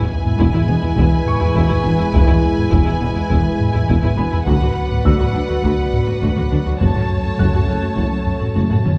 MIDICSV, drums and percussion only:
0, 0, Header, 1, 2, 480
1, 0, Start_track
1, 0, Tempo, 582524
1, 1767, Time_signature, 4, 2, 24, 8
1, 7402, End_track
2, 0, Start_track
2, 0, Title_t, "Taiko and cinematic ensemble drums"
2, 205, Note_on_c, 9, 45, 54
2, 287, Note_off_c, 9, 45, 0
2, 321, Note_on_c, 9, 41, 81
2, 403, Note_off_c, 9, 41, 0
2, 445, Note_on_c, 9, 45, 50
2, 528, Note_off_c, 9, 45, 0
2, 805, Note_on_c, 9, 41, 80
2, 887, Note_off_c, 9, 41, 0
2, 1044, Note_on_c, 9, 45, 55
2, 1126, Note_off_c, 9, 45, 0
2, 1161, Note_on_c, 9, 45, 48
2, 1244, Note_off_c, 9, 45, 0
2, 1280, Note_on_c, 9, 41, 72
2, 1363, Note_off_c, 9, 41, 0
2, 1405, Note_on_c, 9, 45, 50
2, 1487, Note_off_c, 9, 45, 0
2, 1764, Note_on_c, 9, 41, 94
2, 1846, Note_off_c, 9, 41, 0
2, 1889, Note_on_c, 9, 45, 48
2, 1972, Note_off_c, 9, 45, 0
2, 2128, Note_on_c, 9, 45, 50
2, 2211, Note_off_c, 9, 45, 0
2, 2247, Note_on_c, 9, 41, 74
2, 2329, Note_off_c, 9, 41, 0
2, 2368, Note_on_c, 9, 45, 48
2, 2451, Note_off_c, 9, 45, 0
2, 2725, Note_on_c, 9, 41, 73
2, 2808, Note_off_c, 9, 41, 0
2, 2963, Note_on_c, 9, 45, 57
2, 3046, Note_off_c, 9, 45, 0
2, 3086, Note_on_c, 9, 45, 48
2, 3168, Note_off_c, 9, 45, 0
2, 3203, Note_on_c, 9, 41, 70
2, 3285, Note_off_c, 9, 41, 0
2, 3327, Note_on_c, 9, 45, 48
2, 3410, Note_off_c, 9, 45, 0
2, 3686, Note_on_c, 9, 41, 87
2, 3769, Note_off_c, 9, 41, 0
2, 3809, Note_on_c, 9, 45, 47
2, 3891, Note_off_c, 9, 45, 0
2, 4051, Note_on_c, 9, 45, 49
2, 4133, Note_off_c, 9, 45, 0
2, 4167, Note_on_c, 9, 41, 76
2, 4250, Note_off_c, 9, 41, 0
2, 4291, Note_on_c, 9, 45, 46
2, 4374, Note_off_c, 9, 45, 0
2, 4649, Note_on_c, 9, 41, 72
2, 4731, Note_off_c, 9, 41, 0
2, 4890, Note_on_c, 9, 45, 52
2, 4972, Note_off_c, 9, 45, 0
2, 5011, Note_on_c, 9, 45, 46
2, 5094, Note_off_c, 9, 45, 0
2, 5128, Note_on_c, 9, 41, 73
2, 5210, Note_off_c, 9, 41, 0
2, 5249, Note_on_c, 9, 45, 44
2, 5331, Note_off_c, 9, 45, 0
2, 5610, Note_on_c, 9, 41, 82
2, 5692, Note_off_c, 9, 41, 0
2, 5734, Note_on_c, 9, 45, 46
2, 5816, Note_off_c, 9, 45, 0
2, 5976, Note_on_c, 9, 45, 46
2, 6058, Note_off_c, 9, 45, 0
2, 6098, Note_on_c, 9, 41, 72
2, 6180, Note_off_c, 9, 41, 0
2, 6218, Note_on_c, 9, 45, 44
2, 6300, Note_off_c, 9, 45, 0
2, 6571, Note_on_c, 9, 41, 70
2, 6654, Note_off_c, 9, 41, 0
2, 6812, Note_on_c, 9, 45, 53
2, 6894, Note_off_c, 9, 45, 0
2, 6932, Note_on_c, 9, 45, 42
2, 7015, Note_off_c, 9, 45, 0
2, 7055, Note_on_c, 9, 48, 71
2, 7137, Note_off_c, 9, 48, 0
2, 7175, Note_on_c, 9, 45, 76
2, 7258, Note_off_c, 9, 45, 0
2, 7295, Note_on_c, 9, 47, 78
2, 7377, Note_off_c, 9, 47, 0
2, 7402, End_track
0, 0, End_of_file